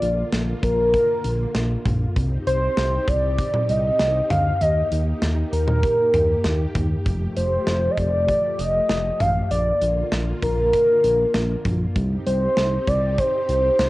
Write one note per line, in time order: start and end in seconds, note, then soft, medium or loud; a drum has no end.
0.00 0.23 A#1 loud
0.00 2.14 D3 medium
0.00 2.14 A#3 medium
0.00 2.14 F4 medium
0.00 0.28 D5 loud
0.00 closed hi-hat medium
0.32 0.54 A#1 medium
0.32 snare loud
0.32 closed hi-hat medium
0.63 0.95 A#1 loud
0.63 1.82 A#4 loud
0.63 kick medium
0.63 closed hi-hat medium
0.94 kick medium
0.94 closed hi-hat medium
1.24 1.46 A#1 loud
1.24 closed hi-hat medium
1.55 1.76 A#1 loud
1.55 snare loud
1.55 closed hi-hat medium
1.85 2.07 A#1 medium
1.85 kick medium
1.85 closed hi-hat medium
1.85 mid tom medium
2.16 2.38 C2 loud
2.16 4.59 C4 medium
2.16 7.02 D#4 medium
2.16 4.59 G4 medium
2.16 kick loud
2.16 closed hi-hat medium
2.47 2.68 C2 loud
2.47 3.10 C5 medium
2.47 closed hi-hat medium
2.77 2.99 C2 loud
2.77 snare loud
2.77 closed hi-hat medium
3.08 3.40 C2 medium
3.08 3.71 D5 loud
3.08 kick medium
3.08 closed hi-hat medium
3.39 kick medium
3.39 closed hi-hat medium
3.54 mid tom medium
3.69 3.91 C2 loud
3.69 4.30 D#5 loud
3.69 closed hi-hat medium
3.99 4.21 C2 loud
3.99 snare loud
3.99 closed hi-hat medium
4.30 4.52 D2 medium
4.30 4.63 F5 loud
4.30 closed hi-hat medium
4.30 mid tom medium
4.61 4.82 D#2 loud
4.61 7.04 A#3 medium
4.61 9.47 G4 medium
4.61 5.22 D#5 loud
4.61 closed hi-hat medium
4.92 5.13 D#2 loud
4.92 closed hi-hat medium
5.22 5.44 D#2 loud
5.22 snare loud
5.22 closed hi-hat medium
5.53 5.85 D#2 medium
5.53 6.71 A#4 loud
5.53 closed hi-hat medium
5.68 mid tom medium
5.83 kick medium
5.83 closed hi-hat medium
6.14 6.36 D#2 medium
6.14 closed hi-hat medium
6.14 mid tom medium
6.44 6.66 D#2 loud
6.44 snare loud
6.44 closed hi-hat medium
6.75 6.97 D#2 medium
6.75 kick medium
6.75 closed hi-hat medium
6.75 mid tom medium
7.06 7.27 F1 loud
7.06 9.48 F3 medium
7.06 9.48 A3 medium
7.06 kick loud
7.06 closed hi-hat medium
7.37 7.58 F1 loud
7.37 7.92 C5 medium
7.37 closed hi-hat medium
7.67 7.89 F1 loud
7.67 snare loud
7.67 closed hi-hat medium
7.91 7.99 D#5 medium
7.98 8.30 F1 loud
7.98 8.61 D5 loud
7.98 kick medium
7.98 closed hi-hat medium
8.28 kick medium
8.28 closed hi-hat medium
8.59 8.80 F1 loud
8.59 9.22 D#5 loud
8.59 closed hi-hat medium
8.89 9.11 F1 loud
8.89 snare loud
8.89 closed hi-hat medium
9.20 9.42 A1 medium
9.20 9.50 F5 loud
9.20 closed hi-hat medium
9.20 mid tom medium
9.51 9.72 A#1 loud
9.51 11.93 D3 medium
9.51 11.93 A#3 medium
9.51 11.93 F4 medium
9.51 10.08 D5 loud
9.51 closed hi-hat medium
9.82 10.03 A#1 medium
9.82 closed hi-hat medium
10.12 10.34 A#1 medium
10.12 snare loud
10.12 closed hi-hat medium
10.42 10.75 A#1 loud
10.42 11.61 A#4 loud
10.42 kick medium
10.42 closed hi-hat medium
10.73 kick medium
10.73 closed hi-hat medium
11.04 11.25 A#1 loud
11.04 closed hi-hat medium
11.34 11.56 A#1 loud
11.34 snare loud
11.34 closed hi-hat medium
11.65 11.87 A#1 medium
11.65 kick medium
11.65 closed hi-hat medium
11.65 mid tom medium
11.96 12.17 C2 loud
11.96 13.89 C4 medium
11.96 13.89 D#4 medium
11.96 13.89 G4 medium
11.96 kick loud
11.96 closed hi-hat medium
12.26 12.48 C2 loud
12.26 12.89 C5 loud
12.26 closed hi-hat medium
12.57 12.78 C2 medium
12.57 snare loud
12.57 closed hi-hat medium
12.87 13.20 C2 loud
12.87 13.20 D5 loud
12.87 kick medium
12.87 closed hi-hat medium
13.18 13.89 C5 loud
13.18 kick medium
13.18 closed hi-hat medium
13.49 13.70 C2 medium
13.49 closed hi-hat medium
13.79 13.89 C2 loud
13.79 snare loud
13.79 closed hi-hat medium